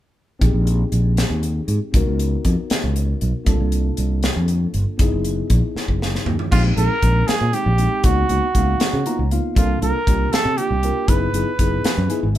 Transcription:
0.39 fretless electric bass A#1, tine electric piano C4 D#4 G4 G#4, kick, closed hi-hat
0.53 fretless electric bass A#1
0.67 closed hi-hat
0.92 fretless electric bass A#1, closed hi-hat
1.17 snare, closed hi-hat
1.30 fretless electric bass D#2
1.43 closed hi-hat
1.68 fretless electric bass G#2, closed hi-hat
1.93 fretless electric bass C#2, tine electric piano B3 D#4 F#4 A#4, kick, closed hi-hat
2.06 fretless electric bass C#2
2.19 closed hi-hat
2.45 fretless electric bass F2, kick, closed hi-hat
2.70 muted fretless electric bass stroke, snare, closed hi-hat
2.84 fretless electric bass C#2
2.96 closed hi-hat
3.21 fretless electric bass B1, closed hi-hat
3.45 fretless electric bass C2, tine electric piano A#3 D4 F4 A4, kick, closed hi-hat
3.60 fretless electric bass C2
3.72 closed hi-hat
3.97 fretless electric bass C2, closed hi-hat
4.23 snare, closed hi-hat
4.36 fretless electric bass F2
4.48 closed hi-hat
4.74 fretless electric bass G1, closed hi-hat
4.98 fretless electric bass F#1, tine electric piano B3 D#4 E4 G#4, kick, closed hi-hat
5.12 fretless electric bass F#1
5.25 closed hi-hat
5.50 fretless electric bass A#1, kick, closed hi-hat
5.75 muted fretless electric bass stroke, snare
5.88 fretless electric bass F#1, kick
6.02 snare
6.15 snare
6.26 fretless electric bass D#2, floor tom
6.39 floor tom
6.51 fretless electric bass A#1, tine electric piano G#3 C4 D#4 G4, trumpet F4, kick, crash
6.76 fretless electric bass A#1, tine electric piano G#3 C4 D#4 G#4, trumpet A#4, closed hi-hat
7.02 fretless electric bass A#1, tine electric piano G#3 C4 D#4 A#4, kick, closed hi-hat
7.27 trumpet G#4, snare, closed hi-hat
7.41 fretless electric bass A#2
7.52 tine electric piano G#3 C4 D#4 G4, trumpet G4, closed hi-hat
7.66 fretless electric bass A#1
7.78 tine electric piano G#3 C4 D#4 G4, closed hi-hat
8.04 fretless electric bass C#2, tine electric piano A#3 B3 D#4 F#4, trumpet F#4, kick, closed hi-hat
8.29 fretless electric bass C#2, tine electric piano A#3 B3 D#4 F#4, closed hi-hat
8.55 fretless electric bass C#2, tine electric piano A#3 B3 D#4 F5, kick, closed hi-hat
8.80 snare, closed hi-hat
8.93 fretless electric bass C#3
9.06 tine electric piano A#3 B3 D#4 F4 A#5, closed hi-hat
9.19 fretless electric bass C#2
9.31 tine electric piano A#3 B3 D#4 F4 F5, closed hi-hat
9.56 fretless electric bass C2, tine electric piano A#3 D4 F4 A4, trumpet F4, kick, closed hi-hat
9.82 fretless electric bass C2, tine electric piano A#3 D4 F4 A4, trumpet A#4, closed hi-hat
10.07 fretless electric bass C2, tine electric piano A#3 D4 F4 G4, kick, closed hi-hat
10.33 trumpet A4, snare, closed hi-hat
10.45 fretless electric bass C3
10.58 tine electric piano A#3 D4 F4 G4, trumpet G4, closed hi-hat
10.71 fretless electric bass C2
10.83 tine electric piano A#3 D4 F4 A#4, closed hi-hat
11.08 fretless electric bass F#1, tine electric piano B3 D#4 E4 G#4, trumpet B4, kick, closed hi-hat
11.33 fretless electric bass F#1, tine electric piano B3 D#4 E4 G#4, closed hi-hat
11.59 fretless electric bass F#1, tine electric piano B3 D#4 E4 G#4, kick, closed hi-hat
11.84 muted fretless electric bass stroke, snare, closed hi-hat
11.98 fretless electric bass F#2
12.09 tine electric piano B3 D#4 E4 G#4 G#5, closed hi-hat
12.23 fretless electric bass G#1

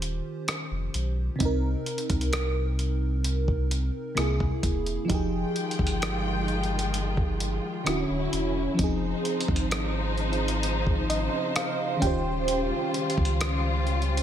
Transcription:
Already playing: sub bass D#1, fm electric piano D#3 C#4 F4 G4 C5
0.02 closed hi-hat
0.48 cross-stick, closed hi-hat
0.71 sub bass F1
0.94 sub bass B1, closed hi-hat
1.36 fm electric piano C3 C4
1.40 sub bass C2, fm electric piano D#4, kick, closed hi-hat
1.45 fm electric piano A#4
1.86 closed hi-hat
1.98 closed hi-hat
2.10 sub bass C2, kick, closed hi-hat
2.21 closed hi-hat
2.33 cross-stick, closed hi-hat
2.79 closed hi-hat
3.24 closed hi-hat
3.48 kick
3.71 closed hi-hat
4.15 sub bass C2, fm electric piano C3 A#3 E4, cross-stick, closed hi-hat
4.20 fm electric piano G#4
4.40 kick
4.63 sub bass E1, kick, closed hi-hat
4.86 closed hi-hat
5.05 fm electric piano F3 D#4
5.10 sub bass F1, string section D#3 G#3 F4 G5, fm electric piano G4, kick, closed hi-hat
5.14 fm electric piano G#4
5.56 closed hi-hat
5.71 closed hi-hat
5.79 sub bass G1, kick
5.87 closed hi-hat
6.02 cross-stick, closed hi-hat
6.48 closed hi-hat
6.64 closed hi-hat
6.79 closed hi-hat
6.94 closed hi-hat
7.17 kick
7.40 closed hi-hat
7.84 sub bass D1, fm electric piano D3 C#4 E4, string section D3 F#3 C#4 E4, cross-stick, closed hi-hat
7.89 fm electric piano F#4
8.10 sub bass D1
8.33 sub bass E1, closed hi-hat
8.74 fm electric piano F3 C4
8.79 sub bass F1, string section C#3 F3 D#4 C5, fm electric piano D#4, kick, closed hi-hat
8.84 fm electric piano G#4
9.25 closed hi-hat
9.41 closed hi-hat
9.48 sub bass G#1, kick
9.56 closed hi-hat
9.71 cross-stick, closed hi-hat
10.18 closed hi-hat
10.33 closed hi-hat
10.48 closed hi-hat
10.63 closed hi-hat
10.87 kick
11.10 fm electric piano D#5, closed hi-hat
11.56 fm electric piano F5, cross-stick, closed hi-hat
11.97 fm electric piano D#3 C#4
12.02 sub bass D#1, string section G3 F4, fm electric piano F4 G4 G5, kick, closed hi-hat
12.07 fm electric piano C5
12.48 closed hi-hat
12.94 closed hi-hat
13.10 closed hi-hat
13.18 sub bass C#2, kick
13.25 closed hi-hat
13.41 cross-stick, closed hi-hat
13.87 string section C#4, closed hi-hat
14.02 closed hi-hat
14.17 closed hi-hat

